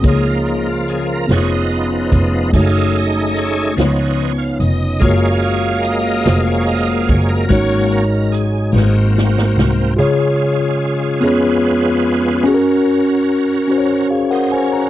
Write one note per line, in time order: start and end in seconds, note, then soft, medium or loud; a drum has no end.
0.00 1.24 C#2 medium
0.00 1.24 C#3 medium
0.00 1.25 G#3 medium
0.00 1.10 A#3 medium
0.00 1.11 F4 medium
0.00 closed hi-hat medium
0.04 2.52 F3 medium
0.04 1.26 F3 soft
0.04 1.29 A#3 medium
0.04 1.26 A#3 soft
0.04 4.99 C#4 medium
0.04 1.11 G#4 medium
0.04 1.12 C#5 medium
0.04 kick medium
0.08 0.47 D#4 medium
0.08 0.28 G#4 medium
0.30 0.38 F4 medium
0.46 0.68 D#4 medium
0.46 closed hi-hat medium
0.69 0.87 F4 medium
0.88 1.08 G#4 medium
0.88 closed hi-hat medium
1.13 1.31 A#4 medium
1.27 2.08 F1 medium
1.27 2.50 F3 soft
1.27 2.35 B3 medium
1.27 2.53 B3 medium
1.27 1.35 E4 soft
1.27 2.37 G#4 soft
1.27 snare medium
1.27 closed hi-hat medium
1.32 2.53 G#3 medium
1.32 2.51 B3 soft
1.32 2.51 D#4 medium
1.32 2.39 F4 soft
1.32 2.37 C#5 medium
1.32 1.52 C#5 loud
1.54 1.90 D#5 medium
1.70 closed hi-hat soft
2.12 2.50 F1 medium
2.12 kick medium
2.12 closed hi-hat medium
2.53 3.73 F#1 medium
2.53 3.77 F#3 medium
2.53 2.59 G#3 medium
2.53 3.74 A3 soft
2.53 3.77 A3 medium
2.53 3.60 D#4 medium
2.53 5.01 D#4 medium
2.53 3.75 D#4 soft
2.53 3.61 F#4 medium
2.53 3.74 G#4 soft
2.53 3.62 C#5 medium
2.53 kick medium
2.53 closed hi-hat medium
2.57 3.63 A3 medium
2.57 2.97 F5 medium
2.95 3.39 D#5 medium
2.95 closed hi-hat medium
3.37 4.44 C#5 medium
3.37 closed hi-hat medium
3.77 4.56 C#2 medium
3.77 4.99 C#3 medium
3.77 4.32 F3 soft
3.77 4.84 B3 medium
3.77 4.33 B3 soft
3.77 4.32 D#4 medium
3.77 4.85 D#4 medium
3.77 4.85 F4 medium
3.77 snare loud
3.77 closed hi-hat medium
3.81 5.02 F3 medium
3.81 5.03 B3 medium
3.81 4.86 C#5 medium
4.19 closed hi-hat soft
4.38 4.58 F5 medium
4.60 4.98 F1 medium
4.60 5.03 D#5 medium
4.60 closed hi-hat medium
5.00 6.22 F#1 medium
5.00 7.45 G#3 medium
5.00 7.46 A#3 soft
5.00 6.09 A#3 medium
5.00 6.09 F4 medium
5.00 5.41 C#5 medium
5.00 6.88 F5 medium
5.00 kick medium
5.00 closed hi-hat medium
5.04 9.96 F#3 medium
5.04 7.50 A#3 medium
5.04 8.72 C#4 medium
5.04 6.10 F#4 medium
5.04 6.10 C#5 medium
5.04 7.49 F5 medium
5.42 5.86 C#5 medium
5.42 closed hi-hat medium
5.83 6.42 D#5 medium
5.83 closed hi-hat medium
6.24 7.05 F1 medium
6.24 7.32 A#3 medium
6.24 7.33 F4 medium
6.24 7.34 F#4 soft
6.24 7.34 C5 medium
6.24 snare medium
6.24 closed hi-hat medium
6.47 6.68 C#5 medium
6.67 6.88 D#5 medium
6.67 closed hi-hat soft
6.89 7.10 F5 medium
7.08 7.47 F#1 medium
7.08 7.30 C#5 medium
7.08 kick medium
7.08 closed hi-hat medium
7.29 7.51 A#4 medium
7.48 8.70 G#1 medium
7.48 8.71 G#2 medium
7.48 8.56 G#3 medium
7.48 9.97 G#3 medium
7.48 8.04 A#3 soft
7.48 8.05 C#4 soft
7.48 8.57 D#4 medium
7.48 9.96 D#4 medium
7.48 8.05 F#4 medium
7.48 8.58 F#4 medium
7.48 7.92 C#5 medium
7.48 kick medium
7.48 closed hi-hat medium
7.53 8.59 C#5 medium
7.92 8.35 A#4 medium
7.92 closed hi-hat medium
8.32 8.97 G#4 medium
8.32 closed hi-hat medium
8.72 9.53 G#1 medium
8.72 9.94 G#2 medium
8.72 9.80 G#3 medium
8.72 9.93 A#3 medium
8.72 9.94 C4 soft
8.72 9.81 D#4 medium
8.72 8.92 F#4 medium
8.72 9.81 F#4 medium
8.72 8.82 B4 medium
8.76 9.99 C4 medium
8.76 snare soft
8.83 9.86 C5 medium
8.94 9.73 F#4 medium
9.18 snare medium
9.38 snare medium
9.57 9.95 C2 medium
9.57 snare medium
9.97 11.19 C#3 medium
9.97 11.20 G#3 medium
9.97 11.20 C#4 medium
9.97 11.04 F4 medium
9.97 11.19 F4 medium
9.97 11.05 G#4 medium
9.97 11.06 C#5 loud
11.20 12.46 F2 medium
11.20 12.46 G#3 medium
11.20 12.45 B3 medium
11.20 12.28 B3 medium
11.20 12.44 C#4 medium
11.20 12.29 C#4 medium
11.20 12.46 F4 medium
11.20 12.29 F4 medium
11.20 12.30 G#4 medium
11.20 11.29 A#4 medium
11.25 12.49 B4 medium
11.25 12.30 C#5 medium
12.44 13.52 C#4 loud
12.44 14.90 C#4 medium
12.44 14.08 F#4 medium
12.44 13.53 F#4 medium
12.44 12.54 G#4 medium
12.44 14.08 A#4 medium
12.54 13.57 A#4 loud
13.67 14.76 C#4 medium
13.67 14.77 F#4 medium
13.67 13.77 C5 medium
13.78 14.16 C#5 medium
14.11 14.31 G#4 soft
14.11 14.31 F5 medium
14.31 14.51 A#4 medium
14.31 14.52 C5 medium
14.31 14.52 D#5 medium
14.31 14.51 F#5 medium
14.52 14.72 A#4 medium
14.52 14.73 C5 medium
14.52 14.72 C#5 medium
14.52 14.72 G#5 medium
14.73 14.90 F#4 medium
14.73 14.90 A#4 medium
14.73 14.90 C#5 soft
14.73 14.90 A#5 medium